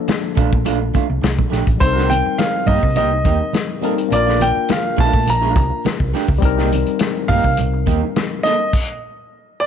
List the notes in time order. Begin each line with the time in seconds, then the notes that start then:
Already playing: F3 A#3 D4 A4
0.08 muted clean electric guitar stroke, snare, closed hi-hat, muted conga, high conga
0.23 muted clean electric guitar stroke
0.35 A#1 A3 D4 F4, kick, closed hi-hat, high conga, low conga
0.52 A#2, muted clean electric guitar stroke, kick
0.65 A#1 A3 D4 F4, closed hi-hat, muted conga, low conga
0.80 muted clean electric guitar stroke
0.94 A3 D4 F4, muted fingered electric bass stroke, kick, closed hi-hat, muted conga, high conga
1.09 C2, muted clean electric guitar stroke
1.22 C2, muted clean electric guitar stroke, snare, closed hi-hat, high conga
1.39 kick, low conga
1.50 A#1 A3 D4 G4, snare, closed hi-hat, muted conga
1.66 A1, muted clean electric guitar stroke, kick, closed hi-hat
1.78 C2 G3 C4 C5, muted clean electric guitar stroke, kick, closed hi-hat, muted conga
1.83 D#4 A4
1.93 D#4 G4 A#4
1.97 A#3, snare
2.09 G5, muted clean electric guitar stroke, closed hi-hat, muted conga, high conga
2.26 muted clean electric guitar stroke, muted fingered electric bass stroke
2.38 F5, muted clean electric guitar stroke, snare, closed hi-hat, muted conga, high conga
2.55 muted clean electric guitar stroke
2.66 G2 A#3 D#4 G4 D#5, kick, open hi-hat, high conga, low conga
2.83 C3, muted clean electric guitar stroke, kick
2.96 C2 A#3 D#4 G4 D#5, closed hi-hat, muted conga, low conga
3.12 muted clean electric guitar stroke
3.24 D#2 A#3 D#4 G4, kick, closed hi-hat, muted conga, high conga
3.41 muted clean electric guitar stroke
3.53 muted clean electric guitar stroke, snare, closed hi-hat, high conga
3.81 G3 A#3 C4 D#4 A4 A#4, closed hi-hat, muted conga
3.98 muted clean electric guitar stroke, closed hi-hat
4.08 A#1 A#3 D4, muted clean electric guitar stroke, closed hi-hat, muted conga
4.13 F4 A#4 D5
4.26 A3 D4 F4, snare
4.40 G5, muted clean electric guitar stroke, closed hi-hat, muted conga, high conga
4.55 muted clean electric guitar stroke, muted fingered electric bass stroke
4.69 F5, muted clean electric guitar stroke, snare, closed hi-hat, muted conga, high conga
4.84 muted clean electric guitar stroke
4.97 A#1 A3 D4 F4 A5, kick, open hi-hat, muted conga, high conga, low conga
5.13 A#2, muted clean electric guitar stroke, kick
5.27 A#1 A#5, muted clean electric guitar stroke, closed hi-hat, muted conga, low conga
5.41 A3 D4 F4
5.54 C2, muted clean electric guitar stroke, kick, closed hi-hat, muted conga, high conga
5.70 muted clean electric guitar stroke
5.84 muted clean electric guitar stroke, muted fingered electric bass stroke, snare, closed hi-hat, muted conga, high conga
6.00 C2, kick
6.14 A3 D4 G4, snare, open hi-hat, muted conga
6.28 C#2, muted clean electric guitar stroke, kick
6.38 G3 C4, kick
6.42 C2 D#4 A#4, muted clean electric guitar stroke, closed hi-hat, muted conga
6.58 A#3 D#4 G4, snare
6.72 muted clean electric guitar stroke, closed hi-hat, muted conga, high conga
6.86 muted fingered electric bass stroke, muted clean electric guitar stroke, closed hi-hat
6.99 muted clean electric guitar stroke, snare, closed hi-hat, muted conga, high conga
7.16 muted clean electric guitar stroke
7.28 G2 A#3 D#4 G4 F5, kick, open hi-hat, high conga, low conga
7.44 C3, muted clean electric guitar stroke, kick
7.57 C2, muted clean electric guitar stroke, closed hi-hat, low conga
7.74 muted clean electric guitar stroke
7.86 D#2 A#3 D#4 G4, kick, closed hi-hat, muted conga, high conga
8.03 muted clean electric guitar stroke
8.16 muted clean electric guitar stroke, snare, closed hi-hat, muted conga, high conga
8.43 A#3 D#4 A4 D#5, snare, closed hi-hat, muted conga
8.60 muted clean electric guitar stroke
8.73 kick, crash
9.60 D5